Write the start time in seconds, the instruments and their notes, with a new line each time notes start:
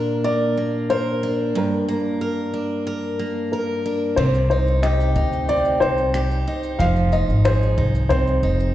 Already playing: steel-string acoustic guitar A#2 A#3 D4 A#4, upright piano A#4
0.24 steel-string acoustic guitar A#4, upright piano D5
0.57 steel-string acoustic guitar A#3
0.90 steel-string acoustic guitar A#4, upright piano C5
1.23 steel-string acoustic guitar D4
1.55 steel-string acoustic guitar G2, upright piano A#4
1.88 steel-string acoustic guitar A#3
2.21 steel-string acoustic guitar A#4
2.54 steel-string acoustic guitar D4
2.87 steel-string acoustic guitar A#4
3.19 steel-string acoustic guitar A#3
3.52 upright piano A#4, steel-string acoustic guitar A#4
3.86 steel-string acoustic guitar D4
4.16 upright bass C2, steel-string acoustic guitar C3, upright piano C5, kick, crash
4.34 shaker
4.50 steel-string acoustic guitar D#4, upright piano C5
4.67 shaker
4.83 steel-string acoustic guitar G4, upright piano D#5, finger snap, shaker
5.00 shaker
5.16 upright bass D2, steel-string acoustic guitar D#4, kick, shaker
5.33 shaker
5.49 steel-string acoustic guitar C4, upright piano D5, shaker
5.65 shaker
5.80 upright bass C2, steel-string acoustic guitar D#4, upright piano C5, shaker
5.98 shaker
6.14 steel-string acoustic guitar G4, finger snap, shaker
6.31 shaker
6.48 steel-string acoustic guitar D#4
6.63 shaker
6.79 upright bass F1, steel-string acoustic guitar F3, upright piano F5, kick, shaker
6.96 shaker
7.12 steel-string acoustic guitar D#4, upright piano D#5, shaker
7.28 upright bass G#1, shaker
7.45 steel-string acoustic guitar G#4, upright piano C5, finger snap, shaker
7.62 shaker
7.78 upright bass C2, steel-string acoustic guitar D#4, kick
7.95 shaker
8.09 steel-string acoustic guitar C4, upright piano C5, kick, shaker
8.27 shaker
8.43 upright bass F1, steel-string acoustic guitar D#4
8.60 shaker